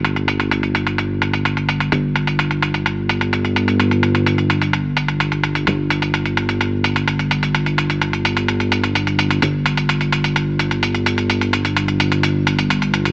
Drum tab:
HH |xxxxxxxxx-xxxxxx|x-xxxxxxx-xxxxxx|xxxxxxxxx-xxxxxx|x-xxxxxxx-xxxxxx|

HH |xxxxxxxxxxxxxxxx|x-xxxxxxx-xxxxxx|xxxxxxxxx-xxxxxx|